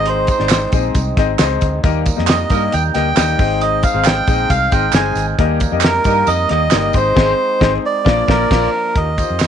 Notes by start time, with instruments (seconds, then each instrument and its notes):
Already playing: fingered electric bass G#1, tonewheel organ G#3 C4 D#4, grand piano C4 D#4 G#4 C5 D#5
0.06 melodica C5, glockenspiel C6, closed hi-hat
0.27 melodica C5, glockenspiel C6, kick, closed hi-hat, tambourine
0.38 fingered electric bass G#1, grand piano C4 D#4 G#4 C5 D5, snare
0.49 snare, clap, closed hi-hat, tambourine
0.72 fingered electric bass A#1, grand piano C4 D#4 G#4 C5 D#5, kick, closed hi-hat, tambourine
0.95 fingered electric bass C2, kick, closed hi-hat, tambourine
1.17 fingered electric bass G#1, grand piano C4 D#4 G#4 C5 D#5, kick, snare, closed hi-hat, tambourine
1.39 fingered electric bass C#2, grand piano C4 D#4 G#4 C5 D#5, snare, clap, closed hi-hat, tambourine
1.61 fingered electric bass D2, kick, closed hi-hat, tambourine
1.83 fingered electric bass D#2, tonewheel organ G3 A#3, grand piano A#3 D#4 G4 A#4 D#5, kick, closed hi-hat, tambourine
2.06 kick, closed hi-hat, tambourine
2.16 fingered electric bass F2, grand piano A#3 D#4 G4 A#4 D#5, snare
2.27 melodica D#5, glockenspiel D#6, snare, clap, closed hi-hat, tambourine
2.50 fingered electric bass G2, horn section G3 D#4 A#4, grand piano A#3 D#4 G4 A#4 D#5, kick, closed hi-hat, tambourine
2.72 fingered electric bass D#2, melodica G5, glockenspiel G6, closed hi-hat, tambourine
2.94 fingered electric bass D2, grand piano A#3 D#4 G4 A#4 D#5, melodica G5, glockenspiel G6, snare, closed hi-hat, tambourine
3.15 fingered electric bass D#2, grand piano A#3 D#4 G4 A#4 D#5, snare, clap, closed hi-hat, tambourine
3.38 fingered electric bass G#1, tonewheel organ G#3 C4, grand piano C4 D#4 G#4 C5 D#5, kick, open hi-hat, tambourine
3.61 melodica D#5, glockenspiel D#6, closed hi-hat
3.83 melodica F5, glockenspiel F6, kick, closed hi-hat, tambourine
3.94 fingered electric bass G#1, grand piano C4 D#4 G#4 C5 F5
4.04 melodica G5, glockenspiel G6, snare, clap, closed hi-hat, tambourine
4.27 fingered electric bass A#1, grand piano C4 D#4 G#4 C5 D#5, kick, closed hi-hat, tambourine
4.50 fingered electric bass C2, melodica F5, glockenspiel F6, kick, closed hi-hat, tambourine
4.72 fingered electric bass G#1, grand piano C4 D#4 G#4 C5 D#5, melodica G5, glockenspiel G6, kick, closed hi-hat, tambourine
4.92 fingered electric bass G1, grand piano C4 D#4 G#4 C5 D#5, melodica G#5, glockenspiel G#6, snare, clap, closed hi-hat, tambourine
5.15 fingered electric bass G#1, closed hi-hat, tambourine
5.38 fingered electric bass D#2, tonewheel organ G3 A#3, grand piano A#3 D#4 G4 A#4 D#5, kick, closed hi-hat
5.60 kick, closed hi-hat, tambourine
5.71 fingered electric bass F2, grand piano A#3 D#4 G4 A#4 D#5
5.81 melodica A#4, glockenspiel A#5, snare, clap, closed hi-hat, tambourine
6.04 fingered electric bass G2, horn section G3 D#4 A#4, grand piano A#3 D#4 G4 A#4 D#5, kick, closed hi-hat, tambourine
6.27 fingered electric bass F2, melodica D#5, glockenspiel D#6, closed hi-hat, tambourine
6.49 fingered electric bass D#2, grand piano A#3 D#4 G4 A#4 D#5, melodica D#5, glockenspiel D#6, snare, closed hi-hat
6.70 fingered electric bass G1, grand piano A#3 D#4 G4 A#4 D#5, snare, clap, closed hi-hat, tambourine
6.93 fingered electric bass G#1, tonewheel organ G#3 C4, grand piano C4 D#4 G#4 C5 D#5, melodica C5, glockenspiel C6, kick, closed hi-hat, tambourine
7.15 fingered electric bass G#1, grand piano C4 D#4 G#4 C5 D#5, kick, snare, crash
7.61 fingered electric bass G#1, grand piano C4 D#4 G#4 C5 D#5, melodica C5, kick, snare
7.86 melodica D5
8.05 fingered electric bass A#1, tonewheel organ F3 A#3 D4, grand piano A#3 D4 F4 A#4 D5, kick, snare
8.28 fingered electric bass A#1, grand piano A#3 D4 F4 A#4 D5, melodica A#4, kick, snare
8.50 fingered electric bass A#1, grand piano A#3 D4 F4 A#4, kick, snare, crash
8.95 fingered electric bass D#2, grand piano D#4 F4 G4 A#4, melodica D#5, kick, closed hi-hat
9.18 grand piano D#4 F4 G4 C5, kick, closed hi-hat, tambourine
9.30 fingered electric bass F2
9.39 snare, clap, closed hi-hat, tambourine